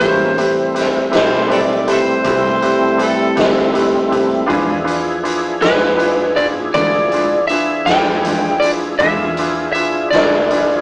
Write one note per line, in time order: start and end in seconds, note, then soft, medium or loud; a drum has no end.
0.00 1.09 A1 medium
0.00 0.23 A2 medium
0.00 0.24 G3 medium
0.00 0.38 G#3 medium
0.00 0.38 A#3 medium
0.00 0.29 C4 medium
0.00 0.24 C4 medium
0.00 0.38 C#4 medium
0.00 0.29 E4 medium
0.00 0.24 E4 medium
0.00 0.39 F4 medium
0.00 0.29 G4 medium
0.00 0.29 B4 medium
0.00 2.95 C5 medium
0.00 kick loud
0.00 closed hi-hat medium
0.37 4.45 G3 medium
0.37 4.45 A3 medium
0.37 0.66 C4 medium
0.37 4.45 C4 medium
0.37 0.66 E4 soft
0.37 4.45 E4 medium
0.37 0.66 G4 soft
0.37 0.66 B4 medium
0.37 closed hi-hat medium
0.74 1.03 C4 soft
0.74 1.03 E4 soft
0.74 1.03 G4 soft
0.74 1.03 B4 medium
0.74 snare soft
0.74 closed hi-hat medium
1.11 2.22 B1 medium
1.11 1.40 C4 medium
1.11 1.36 C4 soft
1.11 1.40 E4 medium
1.11 1.36 E4 medium
1.11 1.40 G4 medium
1.11 1.41 B4 medium
1.11 1.50 C5 medium
1.11 snare loud
1.11 closed hi-hat medium
1.17 1.37 G3 soft
1.48 1.77 C4 medium
1.48 1.77 E4 medium
1.48 1.77 G4 medium
1.48 1.60 A4 medium
1.48 1.77 B4 medium
1.48 1.87 D5 medium
1.48 closed hi-hat medium
1.87 2.16 C4 medium
1.87 2.16 E4 medium
1.87 1.97 E4 medium
1.87 2.16 G4 medium
1.87 1.98 A4 medium
1.87 2.16 B4 medium
1.87 3.04 C5 medium
1.87 closed hi-hat medium
2.24 3.34 C2 medium
2.24 2.48 A2 medium
2.24 2.49 G3 medium
2.24 2.53 C4 medium
2.24 2.49 C4 medium
2.24 2.53 E4 medium
2.24 2.49 E4 medium
2.24 2.53 G4 medium
2.24 2.53 B4 medium
2.24 kick loud
2.24 closed hi-hat medium
2.61 2.90 C4 medium
2.61 2.86 C4 soft
2.61 2.90 E4 soft
2.61 2.86 E4 medium
2.61 2.91 G4 soft
2.61 2.90 B4 medium
2.61 closed hi-hat medium
2.66 2.87 G3 soft
2.97 3.27 C4 medium
2.97 3.27 E4 medium
2.97 3.27 G4 medium
2.97 3.27 B4 medium
2.97 closed hi-hat medium
3.03 3.38 A4 medium
3.35 4.46 D2 medium
3.35 3.65 C4 medium
3.35 3.65 E4 medium
3.35 3.60 E4 soft
3.35 3.65 G4 medium
3.35 3.65 B4 medium
3.35 snare medium
3.35 closed hi-hat medium
3.39 3.62 G3 soft
3.39 3.61 C4 soft
3.73 3.97 A2 medium
3.73 3.98 G3 medium
3.73 4.02 C4 soft
3.73 4.02 E4 soft
3.73 4.02 G4 soft
3.73 4.03 B4 medium
3.73 closed hi-hat medium
3.77 3.99 C4 medium
3.77 3.99 E4 medium
4.10 4.39 C4 medium
4.10 4.40 E4 medium
4.10 4.40 G4 soft
4.10 4.40 B4 medium
4.10 kick medium
4.10 closed hi-hat medium
4.46 4.72 E3 medium
4.46 8.95 F3 medium
4.46 4.76 D4 medium
4.46 8.95 D4 medium
4.46 8.95 E4 medium
4.46 4.76 F4 medium
4.46 4.77 G#4 medium
4.46 8.95 G#4 medium
4.46 4.77 B4 medium
4.46 kick loud
4.46 closed hi-hat medium
4.50 5.59 E2 medium
4.50 4.73 G#3 medium
4.50 4.73 D4 medium
4.50 4.74 F4 medium
4.84 5.14 D4 medium
4.84 5.14 F4 medium
4.84 5.14 G#4 medium
4.84 5.14 B4 medium
4.84 closed hi-hat medium
5.23 5.52 D4 medium
5.23 5.52 F4 soft
5.23 5.52 G#4 soft
5.23 5.52 B4 medium
5.23 closed hi-hat medium
5.61 6.71 F2 medium
5.61 5.86 G#3 soft
5.61 5.90 D4 soft
5.61 5.85 D4 soft
5.61 5.90 F4 soft
5.61 5.85 F4 soft
5.61 5.90 G#4 soft
5.61 6.39 B4 medium
5.61 5.90 B4 medium
5.61 snare loud
5.61 closed hi-hat medium
5.97 6.26 D4 soft
5.97 6.27 F4 soft
5.97 6.26 G#4 soft
5.97 6.27 B4 medium
5.97 closed hi-hat medium
6.35 6.64 D4 soft
6.35 6.64 F4 soft
6.35 6.64 G#4 soft
6.35 6.64 B4 medium
6.35 6.46 D5 medium
6.35 kick medium
6.35 closed hi-hat medium
6.74 7.84 D2 medium
6.74 6.98 E3 medium
6.74 6.98 G#3 medium
6.74 7.02 D4 soft
6.74 7.02 F4 soft
6.74 7.02 G#4 soft
6.74 7.03 B4 medium
6.74 7.47 D5 medium
6.74 kick loud
6.74 closed hi-hat medium
6.78 6.99 D4 medium
6.78 6.99 F4 medium
7.12 7.36 G#3 soft
7.12 7.40 D4 soft
7.12 7.36 D4 soft
7.12 7.40 F4 soft
7.12 7.35 F4 medium
7.12 7.40 G#4 soft
7.12 7.41 B4 soft
7.12 closed hi-hat medium
7.47 7.78 D4 medium
7.47 7.78 F4 soft
7.47 7.78 G#4 soft
7.47 7.79 B4 medium
7.47 7.87 E5 loud
7.47 closed hi-hat medium
7.84 8.96 F2 medium
7.84 8.14 D4 medium
7.84 8.14 F4 soft
7.84 8.10 F4 soft
7.84 8.14 G#4 soft
7.84 8.14 B4 medium
7.84 8.64 G5 medium
7.84 closed hi-hat medium
7.89 8.11 G#3 soft
7.89 8.11 D4 soft
7.89 snare loud
8.25 8.47 E3 soft
8.25 8.48 G#3 medium
8.25 8.53 D4 soft
8.25 8.48 D4 soft
8.25 8.53 F4 soft
8.25 8.48 F4 medium
8.25 8.53 G#4 soft
8.25 8.53 B4 soft
8.25 closed hi-hat medium
8.60 8.91 D4 soft
8.60 8.91 F4 soft
8.60 8.91 G#4 soft
8.60 8.91 B4 medium
8.60 8.70 D5 medium
8.60 closed hi-hat medium
8.99 10.09 E2 medium
8.99 9.23 E3 medium
8.99 9.23 G#3 medium
8.99 10.81 D4 medium
8.99 9.28 D4 medium
8.99 9.23 D4 medium
8.99 10.81 E4 medium
8.99 10.81 F4 medium
8.99 9.28 F4 medium
8.99 10.81 G#4 medium
8.99 9.28 G#4 medium
8.99 9.28 B4 medium
8.99 9.71 E5 medium
8.99 kick loud
8.99 closed hi-hat medium
9.03 9.24 F4 medium
9.37 9.66 D4 medium
9.37 9.66 F4 soft
9.37 9.66 G#4 soft
9.37 9.66 B4 medium
9.37 closed hi-hat medium
9.72 10.02 D4 medium
9.72 10.03 F4 soft
9.72 10.03 G#4 soft
9.72 10.03 B4 medium
9.72 10.08 E5 medium
9.72 closed hi-hat medium
10.11 10.81 D2 medium
10.11 10.41 D4 medium
10.11 10.41 F4 soft
10.11 10.41 G#4 soft
10.11 10.41 B4 medium
10.11 10.81 D5 medium
10.11 closed hi-hat medium
10.15 10.37 G#3 soft
10.15 10.36 D4 soft
10.15 10.36 F4 soft
10.15 snare medium
10.50 10.78 D4 medium
10.50 10.78 F4 soft
10.50 10.78 G#4 soft
10.50 10.79 B4 medium
10.50 closed hi-hat medium